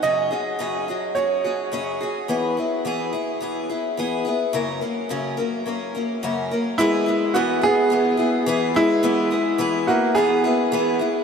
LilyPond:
<<
  \new Staff \with { instrumentName = "Upright piano" } { \time 4/4 \key e \lydian \tempo 4 = 107 dis''2 cis''4. r8 | r1 | r1 | <gis e'>4 <b fis'>8 <b gis'>2 <gis e'>8~ |
<gis e'>4. <ais fis'>8 <b gis'>4. r8 | }
  \new Staff \with { instrumentName = "Steel-string acoustic guitar" } { \time 4/4 \key e \lydian <fis, cis fis cis' fis' gis'>8 <fis cis' fis' gis'>8 <fis, cis fis cis' fis' gis'>8 <fis cis' fis' gis'>8 <fis cis' fis' gis'>8 <fis cis' fis' gis'>8 <fis, cis fis cis' fis' gis'>8 <fis cis' fis' gis'>8 | <e b e' gis'>8 <b e' gis'>8 <e b e' gis'>8 <b e' gis'>8 <e b e' gis'>8 <b e' gis'>8 <e b e' gis'>8 <b e' gis'>8 | <fis, cis fis ais cis' ais'>8 <fis ais cis' ais'>8 <fis, cis fis ais cis' ais'>8 <fis ais cis' ais'>8 <fis ais cis' ais'>8 <fis ais cis' ais'>8 <fis, cis fis ais cis' ais'>8 <fis ais cis' ais'>8 | <e b e' gis'>8 <b e' gis'>8 <e b e' gis'>8 <b e' gis'>8 <e b e' gis'>8 <b e' gis'>8 <e b e' gis'>8 <b e' gis'>8 |
<e b e' gis'>8 <b e' gis'>8 <e b e' gis'>8 <b e' gis'>8 <e b e' gis'>8 <b e' gis'>8 <e b e' gis'>8 <b e' gis'>8 | }
>>